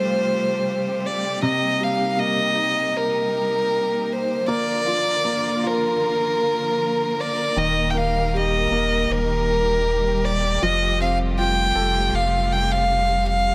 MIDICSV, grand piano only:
0, 0, Header, 1, 2, 480
1, 0, Start_track
1, 0, Key_signature, -2, "major"
1, 0, Tempo, 763359
1, 895, Time_signature, 4, 2, 24, 8
1, 8519, End_track
2, 0, Start_track
2, 0, Title_t, "Grand piano"
2, 0, Program_c, 0, 0
2, 0, Control_c, 0, 64, 127
2, 0, Note_on_c, 0, 53, 57
2, 0, Note_on_c, 0, 60, 37
2, 0, Note_on_c, 0, 65, 41
2, 0, Note_on_c, 0, 69, 40
2, 155, Note_off_c, 0, 60, 0
2, 394, Note_off_c, 0, 65, 0
2, 632, Note_off_c, 0, 69, 0
2, 872, Note_off_c, 0, 53, 0
2, 894, Note_on_c, 0, 48, 65
2, 904, Control_c, 0, 64, 0
2, 1016, Control_c, 0, 64, 127
2, 1133, Note_on_c, 0, 55, 36
2, 1371, Note_on_c, 0, 58, 39
2, 1605, Note_on_c, 0, 63, 45
2, 2065, Note_off_c, 0, 55, 0
2, 2305, Note_off_c, 0, 58, 0
2, 2543, Note_off_c, 0, 63, 0
2, 2787, Note_off_c, 0, 48, 0
2, 2817, Note_on_c, 0, 58, 55
2, 2820, Control_c, 0, 64, 0
2, 2937, Control_c, 0, 64, 127
2, 3055, Note_on_c, 0, 65, 36
2, 3289, Note_off_c, 0, 58, 0
2, 3298, Note_on_c, 0, 58, 42
2, 3534, Note_off_c, 0, 65, 0
2, 3544, Note_on_c, 0, 65, 47
2, 4242, Note_off_c, 0, 58, 0
2, 4486, Note_off_c, 0, 65, 0
2, 4757, Note_on_c, 0, 51, 51
2, 4759, Control_c, 0, 64, 0
2, 4863, Control_c, 0, 64, 127
2, 4993, Note_on_c, 0, 58, 33
2, 5244, Note_on_c, 0, 67, 41
2, 5471, Note_off_c, 0, 58, 0
2, 5481, Note_on_c, 0, 58, 45
2, 6174, Note_off_c, 0, 67, 0
2, 6412, Note_off_c, 0, 58, 0
2, 6652, Note_off_c, 0, 51, 0
2, 6679, Note_on_c, 0, 53, 59
2, 6683, Control_c, 0, 64, 0
2, 6785, Control_c, 0, 64, 127
2, 6919, Note_on_c, 0, 60, 33
2, 7153, Note_on_c, 0, 65, 40
2, 7390, Note_on_c, 0, 69, 47
2, 7845, Note_off_c, 0, 60, 0
2, 8080, Note_off_c, 0, 65, 0
2, 8317, Note_off_c, 0, 69, 0
2, 8519, Note_off_c, 0, 53, 0
2, 8519, End_track
0, 0, End_of_file